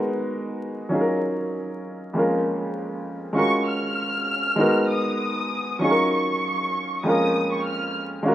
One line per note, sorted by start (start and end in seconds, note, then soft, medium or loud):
0.00 0.88 G#3 medium
0.00 0.88 B3 medium
0.00 0.89 D#4 medium
0.00 0.90 F#4 medium
0.00 0.90 A#4 medium
0.89 2.11 F#3 medium
0.89 2.11 C#4 medium
0.89 2.12 D#4 medium
0.89 2.13 F4 medium
0.94 1.01 G#4 medium
1.01 2.17 A#4 medium
2.13 3.34 F2 medium
2.13 3.31 G#3 medium
2.13 3.35 A#3 medium
2.13 3.33 C#4 medium
2.18 3.34 F4 medium
2.18 3.37 A#4 medium
3.33 4.54 G#3 medium
3.33 4.56 C#4 medium
3.33 4.56 F4 medium
3.33 4.57 F#4 medium
3.37 4.58 A#4 medium
3.37 3.65 C#6 loud
3.68 4.86 F6 medium
4.56 5.78 G#3 medium
4.56 5.78 B3 medium
4.56 5.79 D#4 medium
4.60 5.80 F#4 medium
4.60 5.80 A#4 medium
4.90 5.78 D#6 medium
5.79 7.00 F#3 medium
5.79 7.01 C#4 medium
5.79 7.02 D#4 medium
5.79 6.09 C#6 loud
5.83 7.02 F4 medium
5.83 5.91 G#4 medium
5.91 7.06 A#4 medium
6.13 7.00 C#6 medium
7.03 8.24 F2 medium
7.03 8.21 G#3 medium
7.03 8.25 A#3 medium
7.03 8.23 C#4 medium
7.03 7.50 D#6 medium
7.08 8.24 F4 medium
7.08 8.26 A#4 medium
7.52 7.64 C#6 medium
7.66 7.93 F6 medium
8.23 8.35 G#3 medium
8.23 8.35 C#4 medium
8.23 8.35 F4 medium
8.23 8.35 F#4 medium
8.28 8.35 A#4 medium